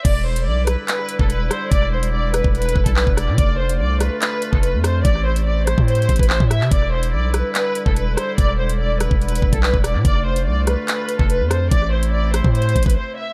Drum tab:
CC |x-----------------------------------------------|------------------------------------------------|------------------------------------------------|------------------------------------------------|
HH |x--------x--------x-----x-----x-----x-----x-----|x--------x--------x-----x-x-x----x--------x-----|x--------x--------x-----x-----x-----x-----x-----|x--------x--------x-----x-x-x-x-x-x-------x-----|
CP |------------------------x-----------------------|------------------------------------x-----------|------------------------x-----------------------|------------------------------------x--------x--|
SD |------------------r-----------------------r-----|------------------r-----------------------r-----|------------------r-----------------------r-----|------------------r-----------------------r-----|
BD |o--------------------------------o--------------|o--------------------o--------o--o-----o--------|o--------------------------------o--------------|o--------------------o--------o--o-----o--------|

CC |------------------------------------------------|------------------------------------------------|------------------------------------------------|------------------------------------------------|
HH |x--------x--------x-----x-----x-----x-----x-----|x--------x--------x-----x-x-x----x--------x-----|x--------x--------x-----x-----x-----x-----x-----|x--------x--------x-----x-x-x-x-x-x-------------|
CP |------------------------x-----------------------|------------------------------------x-----------|------------------------x-----------------------|------------------------------------------------|
SD |------------------r-----------------------r-----|------------------r-----------------------r-----|------------------r-----------------------r-----|------------------r-----------------------------|
BD |o--------------------------------o--------------|o--------------------o--------o--o-----o--------|o--------------------------------o--------------|o--------------------o--------o--o--------------|